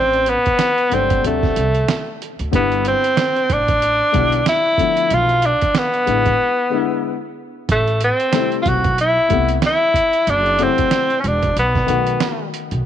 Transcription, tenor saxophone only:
Already playing: C4
0.30 B3
0.94 C4
1.27 A3
2.55 B3
2.88 C4
3.53 D4
4.49 E4
5.14 F4
5.46 D4
5.78 B3
7.71 A3
8.04 C4
8.62 F4
8.69 F#4
9.01 E4
9.66 E4
10.30 D4
10.63 C4
11.20 C#4
11.27 D4
11.59 B3

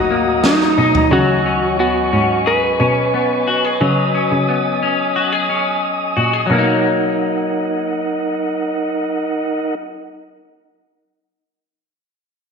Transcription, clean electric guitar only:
Already playing: F#3 D#4
0.10 A#3
0.44 F#3
0.78 D#4
1.12 F#3
1.46 C#4
1.79 B3
2.13 C#4
2.46 G#4
2.80 C#4
3.14 B3
3.47 F#4
3.64 G#4
3.81 F#3
4.15 C#4
4.49 B3
4.83 C#4
5.16 F#4
5.33 G#4
5.49 C#4
6.17 F#4
6.33 G#4
6.46 F#3
6.53 A#3
6.58 D#4

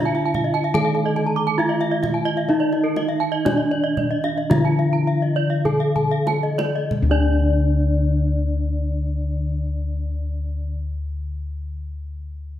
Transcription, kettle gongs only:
Already playing: D4
0.74 D#3
1.59 D#4
2.49 D#4
3.46 D#4
4.51 D3
5.65 D#4
7.02 D2

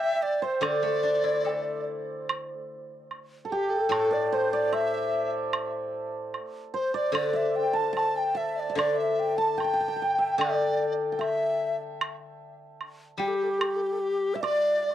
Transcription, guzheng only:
0.61 D3
0.83 A3
1.03 D4
1.24 E4
1.45 A4
3.89 A2
7.12 D3
8.75 D3
10.38 D3
13.18 G3

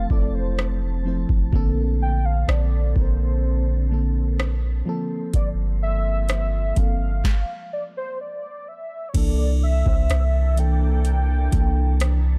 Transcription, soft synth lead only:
0.10 D5
0.34 C5
2.02 G5
2.25 F5
2.49 D5
2.97 C5
5.35 D5
5.83 E5
6.78 F5
7.73 D5
7.97 C5
8.21 D5
8.68 E5
9.09 C#5
9.16 D5
9.63 E5
10.59 G5

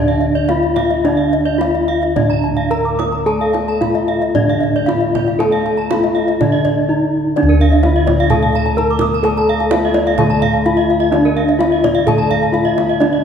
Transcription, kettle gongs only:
Already playing: D2 D4
0.50 D#4
1.05 D4
1.61 D#4
2.16 A2
2.70 D#4
3.26 A4
3.81 D#4
4.35 A2
4.88 D#4
5.40 A4
5.91 D#4
6.41 D3
6.90 D#4
7.38 D4
7.43 D2
7.85 D#4
8.78 D#4
9.25 A4
9.73 D#4
10.18 D3
10.66 D#4
11.13 D4
12.08 D3
12.55 D#4
13.01 D4

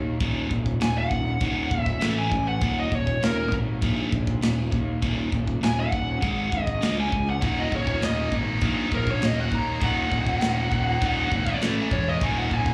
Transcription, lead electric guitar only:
0.82 G#5
0.98 F#5
1.81 E5
2.19 G#5
2.48 F#5
2.80 D#5
2.95 C#5
3.24 A#4
5.64 G#5
5.80 F#5
6.62 D#5
7.00 G#5
7.30 F#5
7.60 D#5
7.76 C#5
8.04 D#5
8.95 A#4
9.11 C#5
9.25 D#5
9.40 F#5
9.55 A#5
9.84 F#5
11.93 C#5
12.08 D#5
12.23 G#5
12.38 F#5
12.53 G#5

